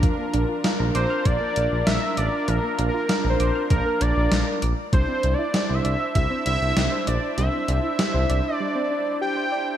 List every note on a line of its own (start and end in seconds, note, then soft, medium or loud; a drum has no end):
0.00 0.11 F3 medium
0.00 4.58 D4 medium
0.00 4.58 F4 medium
0.00 4.58 A#4 medium
0.00 kick loud
0.00 closed hi-hat medium
0.18 0.26 A#3 medium
0.34 0.45 A#1 loud
0.34 0.42 D4 medium
0.34 closed hi-hat medium
0.49 0.57 F4 medium
0.64 0.72 F5 medium
0.64 snare loud
0.64 closed hi-hat medium
0.79 0.91 A#1 loud
0.79 0.87 A#5 medium
0.95 1.06 A#1 loud
0.95 1.27 C5 medium
0.95 1.03 D6 loud
0.95 closed hi-hat medium
1.10 1.18 F6 medium
1.25 1.37 A#1 loud
1.25 1.33 F3 medium
1.25 1.86 D5 loud
1.25 kick medium
1.25 closed hi-hat medium
1.41 1.49 A#3 medium
1.56 1.67 A#1 loud
1.56 1.64 D4 medium
1.56 closed hi-hat medium
1.72 1.83 A#1 medium
1.87 1.98 A#1 loud
1.87 2.19 E5 loud
1.87 1.95 F5 medium
1.87 snare loud
1.87 closed hi-hat medium
2.02 2.10 A#5 medium
2.17 2.29 A1 medium
2.17 2.49 D5 loud
2.17 2.25 D6 medium
2.17 closed hi-hat medium
2.48 2.59 A#1 loud
2.48 2.56 F3 medium
2.48 2.88 A#4 loud
2.48 closed hi-hat medium
2.63 2.71 A#3 medium
2.79 2.90 A#1 medium
2.79 2.87 D4 medium
2.79 closed hi-hat medium
2.89 3.27 A#4 medium
2.94 3.02 F4 medium
3.09 3.17 F5 medium
3.09 snare loud
3.09 closed hi-hat medium
3.24 3.36 A#1 medium
3.24 3.32 A#5 medium
3.30 3.68 C5 medium
3.40 3.51 A#1 loud
3.40 3.48 D6 loud
3.40 closed hi-hat medium
3.55 3.63 F6 medium
3.70 3.82 A#1 loud
3.70 3.78 F3 medium
3.70 4.03 A#4 medium
3.70 kick medium
3.70 closed hi-hat medium
3.86 3.94 A#3 medium
4.01 4.12 A#1 medium
4.01 4.09 D4 medium
4.01 4.62 D5 medium
4.01 closed hi-hat medium
4.16 4.27 A#1 loud
4.32 4.43 A#1 loud
4.32 4.40 F5 medium
4.32 snare loud
4.32 closed hi-hat medium
4.47 4.55 A#5 medium
4.62 4.74 A#1 medium
4.62 4.70 D6 medium
4.62 closed hi-hat medium
4.93 5.04 C2 loud
4.93 5.01 G3 medium
4.93 9.77 D4 medium
4.93 9.77 E4 medium
4.93 9.77 C5 medium
4.93 5.35 C5 loud
4.93 kick loud
4.93 closed hi-hat medium
5.08 5.16 C4 medium
5.23 5.35 C2 loud
5.23 5.31 D4 medium
5.23 closed hi-hat medium
5.34 5.76 D5 loud
5.39 5.47 E4 medium
5.54 5.62 G4 medium
5.54 snare loud
5.54 closed hi-hat medium
5.69 5.81 C2 loud
5.69 5.77 C5 medium
5.74 6.15 E5 loud
5.84 5.96 C2 loud
5.84 5.93 D5 loud
5.84 closed hi-hat medium
6.00 6.08 E5 medium
6.15 6.27 C2 loud
6.15 6.23 G3 medium
6.15 6.44 E5 loud
6.15 kick medium
6.15 closed hi-hat medium
6.30 6.38 C4 medium
6.46 6.57 C2 medium
6.46 6.54 D4 medium
6.46 7.09 E5 loud
6.46 closed hi-hat medium
6.61 6.72 C2 medium
6.76 6.88 C2 loud
6.76 6.84 G4 medium
6.76 snare loud
6.76 closed hi-hat medium
6.92 7.00 C5 medium
7.07 7.18 A#1 medium
7.07 7.15 D5 medium
7.07 7.37 D5 loud
7.07 closed hi-hat medium
7.38 7.49 C2 loud
7.38 7.46 G3 medium
7.38 8.54 E5 loud
7.38 closed hi-hat medium
7.53 7.61 C4 medium
7.68 7.79 C2 loud
7.68 7.76 D4 medium
7.68 closed hi-hat medium
7.84 7.92 E4 medium
7.99 8.07 G4 medium
7.99 snare loud
7.99 closed hi-hat medium
8.14 8.25 C2 medium
8.14 8.22 C5 medium
8.29 8.41 C2 medium
8.29 8.38 D5 loud
8.29 closed hi-hat medium
8.45 8.53 E5 medium
8.54 9.18 D5 loud
8.60 8.68 G3 medium
8.75 8.83 C4 medium
8.91 8.99 D4 medium
9.21 9.29 G4 medium
9.21 9.77 G5 loud
9.37 9.45 C5 medium
9.52 9.60 D5 medium